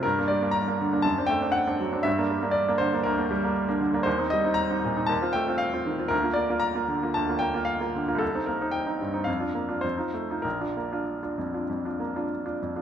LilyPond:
\new Staff \with { instrumentName = "Grand piano" } { \time 4/4 \key g \dorian \tempo 4 = 116 << { bes'8 d''8 bes''4 a''8 g''8 fis''4 | e''4 d''8 c''8 bes'4. r8 | \key bes \major c''8 ees''8 bes''4 a''8 g''8 f''4 | bes'8 d''8 bes''4 a''8 g''8 f''4 |
a'8 bes'8 g''4 f''4 c''4 | bes'2. r4 | } \\ { g,16 <bes d'>16 g16 <bes d'>8 <bes d'>16 d16 <bes d'>16 fis,16 <c' d'>16 a16 <c' d'>8 <c' d'>16 fis16 <c' d'>16 | g,16 <bes d'>16 g16 <bes d'>8 <bes d'>16 d16 <bes d'>16 d,16 <bes d'>16 g16 <bes d'>8 <bes d'>16 d16 <bes d'>16 | ees,16 <c' ees'>16 g16 <c' ees'>8 <c' ees'>16 bes,16 <c' ees'>16 ees,16 <c' f'>16 a16 <c' f'>8 <c' f'>16 ees16 <c' f'>16 | d,16 <bes f'>16 bes16 <bes f'>8 <bes f'>16 d16 <bes f'>16 d,16 <bes f'>16 bes16 <bes f'>8 <bes f'>16 d16 <bes f'>16 |
c,16 <c' ees'>16 bes16 <c' ees'>8 <c' ees'>16 g,16 <c' ees'>16 f,16 <d' f'>16 bes16 <d' f'>16 f,16 <ees' f'>16 a16 <ees' f'>16 | bes,,16 <d' f'>16 bes16 <d' f'>8 <d' f'>16 f,16 <d' f'>16 f,16 <d' f'>16 bes16 <d' f'>8 <d' f'>16 f,16 <d' f'>16 | } >> }